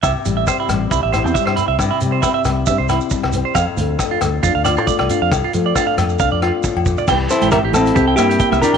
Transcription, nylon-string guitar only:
0.04 1.77 C3 medium
0.25 0.70 G3 soft
0.47 0.92 C4 medium
0.70 1.36 G3 soft
0.93 1.59 C4 medium
1.15 2.90 E4 soft
1.38 2.02 G3 medium
1.60 2.25 C4 soft
1.80 3.53 C3 medium
2.04 2.46 G3 soft
2.25 2.69 C4 medium
2.47 3.12 G3 soft
2.69 3.35 C4 medium
2.92 3.57 E4 soft
3.14 3.57 G3 medium
3.36 4.00 C4 medium
3.57 5.30 F2 medium
3.80 4.24 A3 soft
4.00 4.45 D4 medium
4.24 4.87 A3 soft
4.45 5.09 D4 medium
4.67 5.30 F4 medium
4.89 5.30 A3 medium
5.11 5.30 D4 medium
5.32 7.06 F2 medium
5.55 5.98 A3 medium
5.77 6.19 D4 medium
6.00 7.07 A3 soft
6.20 7.06 D4 medium
6.42 7.06 F4 medium
6.64 6.85 A2 medium
6.86 7.08 A#2 medium
7.09 7.48 C3 medium
7.09 7.53 E3 medium
7.09 8.17 G3 medium
7.09 7.74 E4 medium
7.09 muted nylon-string guitar stroke medium
7.31 7.95 C4 medium
7.75 8.60 E4 medium
7.95 8.35 G2 medium
7.95 8.78 C4 medium
8.18 8.78 G3 medium
8.39 8.78 E3 medium
8.62 8.78 E4 medium

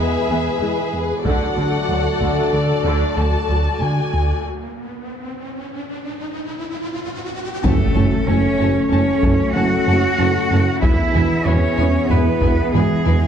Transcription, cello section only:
0.29 0.37 E2 soft
0.61 0.69 E2 soft
1.25 1.33 D2 medium
1.57 1.65 D2 soft
1.89 1.97 D2 soft
2.21 2.29 D2 soft
2.53 2.61 D2 soft
2.85 2.93 D2 soft
3.17 3.25 D2 soft
3.48 3.56 D2 soft
3.81 3.89 D2 soft
7.63 8.23 A3 medium
8.27 8.90 C#4 medium
8.91 9.54 C#4 medium
9.55 10.82 F#4 medium
10.82 11.45 E4 medium
11.45 12.10 C#4 medium
12.10 12.74 B3 medium
12.74 13.27 G#3 medium

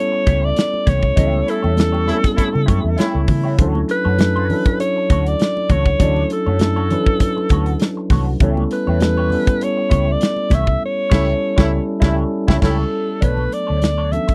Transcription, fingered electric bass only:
0.27 0.51 C#2 loud
0.87 1.11 C2 medium
1.18 1.41 C#2 medium
1.64 2.11 E2 medium
2.55 2.66 C#3 medium
2.68 2.81 F#2 medium
2.84 2.95 E2 medium
2.98 muted fingered electric bass stroke soft
3.15 3.26 C#2 medium
3.28 3.60 C#3 medium
3.59 3.82 D2 loud
4.05 4.53 F#2 medium
5.10 5.34 D2 medium
5.70 5.93 C#2 medium
6.00 6.23 D2 loud
6.47 6.94 F#2 medium
7.51 7.74 D2 medium
8.11 8.34 C2 medium
8.41 8.64 C#2 loud
8.88 9.34 E2 medium
9.92 10.15 C#2 loud
10.52 10.75 C2 medium
11.12 11.33 C#2 medium
11.58 11.78 C#2 loud
12.02 12.23 C#2 loud
12.48 12.60 C#2 medium
12.63 12.83 C#2 loud
13.23 13.46 B1 medium
13.70 14.17 D2 medium

